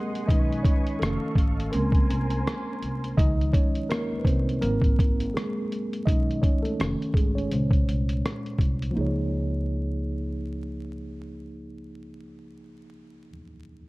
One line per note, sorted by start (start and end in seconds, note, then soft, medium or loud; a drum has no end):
0.00 0.24 F#3 medium
0.00 0.30 G#3 medium
0.00 0.31 A#3 medium
0.00 0.25 C4 medium
0.00 0.30 G4 medium
0.00 0.25 G#4 medium
0.00 0.30 G#4 medium
0.00 0.30 A#4 medium
0.00 1.70 D#5 medium
0.00 0.27 F#5 medium
0.00 0.26 C6 medium
0.15 closed hi-hat soft
0.28 0.60 B1 medium
0.28 0.97 D#3 medium
0.28 0.98 G#3 soft
0.28 0.65 C#4 medium
0.28 0.63 D#4 medium
0.28 1.00 B4 medium
0.28 0.65 D#5 loud
0.28 1.00 G#5 medium
0.28 1.71 C#6 medium
0.28 kick loud
0.28 closed hi-hat medium
0.52 closed hi-hat soft
0.63 0.99 C#4 medium
0.63 0.97 C#5 medium
0.63 kick loud
0.63 closed hi-hat medium
0.87 closed hi-hat soft
0.99 1.20 F1 medium
0.99 1.51 D#3 medium
0.99 1.70 A3 medium
0.99 1.52 C#4 medium
0.99 1.75 A4 medium
0.99 1.72 A4 medium
0.99 1.73 F5 medium
0.99 cross-stick loud
0.99 closed hi-hat medium
1.23 muted upright bass stroke soft
1.35 1.68 G#1 medium
1.35 kick medium
1.35 closed hi-hat medium
1.60 closed hi-hat soft
1.72 2.05 C#2 loud
1.72 3.14 G#3 soft
1.72 2.78 A#3 medium
1.72 3.14 C4 medium
1.72 3.14 C#4 soft
1.72 2.77 A#4 medium
1.72 3.16 A#4 medium
1.72 3.16 C5 medium
1.72 3.16 G#5 medium
1.72 3.16 C6 medium
1.72 closed hi-hat medium
1.92 kick medium
1.92 closed hi-hat soft
2.10 2.41 C2 medium
2.10 closed hi-hat medium
2.30 closed hi-hat medium
2.47 cross-stick loud
2.47 closed hi-hat medium
2.82 3.13 C2 medium
2.82 closed hi-hat medium
3.04 closed hi-hat medium
3.17 3.49 C#2 loud
3.17 4.58 D#3 medium
3.17 4.59 F3 soft
3.17 4.59 G#3 medium
3.17 3.52 D#4 medium
3.17 3.55 D#5 loud
3.17 kick loud
3.17 closed hi-hat medium
3.41 closed hi-hat soft
3.53 3.88 C#4 medium
3.53 3.87 C#5 medium
3.53 kick medium
3.53 closed hi-hat medium
3.75 closed hi-hat soft
3.90 4.18 A#3 medium
3.90 4.18 A#4 medium
3.90 cross-stick loud
3.90 closed hi-hat medium
4.12 muted upright bass stroke soft
4.19 4.25 B4 medium
4.25 4.57 C2 medium
4.25 4.60 C4 medium
4.25 4.59 C5 medium
4.25 kick medium
4.25 closed hi-hat medium
4.49 closed hi-hat soft
4.61 4.94 G#1 loud
4.61 5.12 F#3 medium
4.61 5.31 A#3 medium
4.61 5.13 C4 medium
4.61 5.30 A#4 loud
4.61 closed hi-hat medium
4.82 kick medium
4.82 closed hi-hat soft
4.99 5.30 G#1 medium
4.99 kick medium
4.99 closed hi-hat medium
5.20 closed hi-hat medium
5.34 5.88 G#3 medium
5.34 5.87 G#4 medium
5.34 cross-stick medium
5.34 closed hi-hat medium
5.72 closed hi-hat medium
5.93 closed hi-hat medium
6.05 6.39 B1 medium
6.05 6.75 D#3 medium
6.05 6.75 G#3 medium
6.05 6.42 C#4 medium
6.05 6.41 D#4 medium
6.05 6.43 D#5 loud
6.05 kick medium
6.05 closed hi-hat medium
6.31 closed hi-hat soft
6.42 6.63 C#4 medium
6.42 6.64 C#5 medium
6.42 kick medium
6.42 closed hi-hat medium
6.63 6.78 A3 medium
6.63 7.16 A4 medium
6.63 closed hi-hat soft
6.79 6.98 F1 medium
6.79 7.29 D#3 medium
6.79 7.29 A3 soft
6.79 7.30 C#4 medium
6.79 cross-stick loud
6.79 closed hi-hat medium
7.01 muted upright bass stroke soft
7.01 closed hi-hat soft
7.14 7.46 G#1 medium
7.14 7.35 G#3 medium
7.14 7.36 G#4 medium
7.14 kick medium
7.14 closed hi-hat medium
7.35 8.56 C#4 medium
7.35 8.55 C#5 medium
7.35 closed hi-hat soft
7.51 7.83 C#2 medium
7.51 8.92 A#2 medium
7.51 8.92 G#3 soft
7.51 8.92 C5 medium
7.51 closed hi-hat medium
7.71 kick medium
7.71 closed hi-hat soft
7.89 8.19 C2 medium
7.89 closed hi-hat medium
8.09 closed hi-hat medium
8.26 cross-stick loud
8.26 closed hi-hat medium
8.46 closed hi-hat soft
8.59 8.91 C2 medium
8.59 kick medium
8.59 closed hi-hat medium
8.82 closed hi-hat medium
8.91 13.29 F3 medium
8.91 13.30 A#3 medium
8.96 13.32 C#2 medium
8.96 13.31 D#4 medium
8.96 13.32 G#4 medium
9.01 13.34 C#5 medium